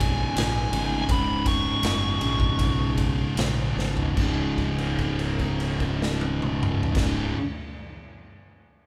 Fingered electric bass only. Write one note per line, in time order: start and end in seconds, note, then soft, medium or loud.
0.00 0.24 B1 medium
0.35 0.66 A#1 medium
0.72 1.02 G#1 medium
1.09 1.70 C#1 medium
1.83 2.14 F#1 loud
2.20 2.52 A#1 medium
2.59 3.23 B1 medium
3.37 3.70 A#1 medium
3.76 4.10 G#1 medium
4.17 6.81 C#1 medium
6.95 7.29 C#1 medium